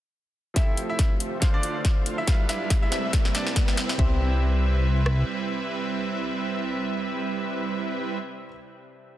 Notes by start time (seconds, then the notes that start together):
0.54 F1 F3 A3 C4 E4 F4 G4 A4 C5 E5, kick, snare, closed hi-hat, riser
0.77 closed hi-hat
0.89 E4 E5
0.99 kick, snare, closed hi-hat
1.20 closed hi-hat
1.40 D3 A3 D4 F4 C5 F5, kick, snare, closed hi-hat
1.54 D4 D5
1.63 closed hi-hat
1.85 kick, snare, closed hi-hat
2.06 closed hi-hat
2.18 E4 E5
2.25 G3 D4 F4 A4 F5, kick, snare, closed hi-hat
2.29 B4
2.49 E4 E5, snare, closed hi-hat
2.70 kick, snare, closed hi-hat
2.82 E4 E5
2.90 C2 C3 G3 C4 D4 E4 B4 E5, snare, closed hi-hat
3.13 kick, snare, closed hi-hat
3.25 snare
3.35 D4 D5, snare, closed hi-hat
3.47 snare
3.56 kick, snare, closed hi-hat
3.68 snare
3.77 snare, closed hi-hat
3.89 snare
3.96 C2 C3 G3 C4 D4 E4 C5 E5, kick
4.00 E4 G4
5.06 cross-stick